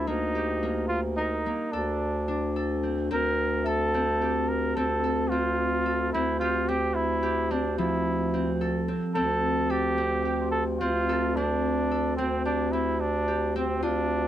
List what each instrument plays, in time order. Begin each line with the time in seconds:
Already playing: harp C4 D4 F4 A4
0.07 bass clarinet D2, harp A#3, flugelhorn D#4
0.35 harp G4
0.63 harp A#3
0.88 flugelhorn F4
1.16 flugelhorn D#4, harp A#4
1.46 harp A#3
1.72 bass clarinet D2, flugelhorn D4, harp A4
2.28 harp D4
2.56 harp A4
2.83 harp C4
3.11 bass clarinet D2, harp C4, flugelhorn A#4
3.64 harp A4, flugelhorn A4, celesta E5
3.81 celesta G5
3.94 harp C4
4.03 celesta A5
4.21 harp G4
4.49 flugelhorn A#4
4.76 bass clarinet D2, harp C4, flugelhorn A4
5.04 harp A4
5.30 harp C4, flugelhorn F4
5.86 harp A4
6.13 bass clarinet D2, harp C4, flugelhorn E4
6.39 flugelhorn F4, harp G4
6.68 harp C4, flugelhorn G4
6.94 flugelhorn E4
7.23 harp G4
7.51 harp C4, flugelhorn D4
7.78 bass clarinet D2, harp F3, flugelhorn E4
8.34 harp C4
8.61 harp A4
8.88 harp C4
9.15 bass clarinet D2, harp C4, flugelhorn A4
9.70 flugelhorn G4, harp A4
9.98 harp C4
10.23 harp G4, celesta G5
10.41 celesta C6
10.52 flugelhorn A4
10.80 bass clarinet D2, harp C4, flugelhorn F4
11.09 harp A4
11.36 harp C4, flugelhorn D4
11.91 harp A4
12.17 bass clarinet D2, flugelhorn C4, harp C4
12.45 flugelhorn D4, harp G4
12.72 harp C4, flugelhorn E4
13.00 flugelhorn D4
13.28 harp G4
13.56 harp C4, flugelhorn C4
13.83 bass clarinet D2, flugelhorn D4, harp F4